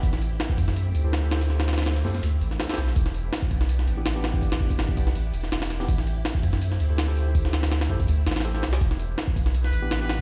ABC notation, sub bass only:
X:1
M:4/4
L:1/16
Q:"Swing 16ths" 1/4=164
K:Ador
V:1 name="Sub bass" clef=bass
A,,,4 z2 F,,4 D,,6- | D,,6 F,,2 D,,2 A,,,2 z2 C,, A,,, | E,,,4 z2 B,,,4 A,,,6- | A,,,6 B,,,2 A,,,2 E,,,2 E,,,4 |
A,,,4 z2 F,,4 D,,6- | D,,6 F,,2 D,,2 A,,,4 C,,2 | E,,,4 z2 B,,,4 A,,,6 |]